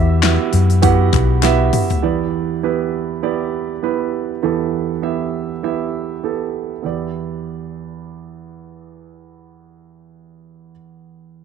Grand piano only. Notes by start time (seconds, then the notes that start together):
Already playing: E3 B3 E4 F#4 G4 E5
0.23 B3 E4 F#4 G4 E5
0.82 B3 E4 F#4 G4 F#5
1.43 B3 E4 F#4 G4 E5
2.02 E2 E3 B3 E4 G4 D5
2.63 B3 E4 G4 B4
3.23 B3 E4 G4 D5
3.83 B3 E4 G4 B4
4.43 E2 E3 B3 E4 G4 A4
5.02 B3 E4 G4 E5
5.63 B3 E4 G4 E5
6.23 B3 E4 G4 A4
6.82 E2 B3 E4 G4 D5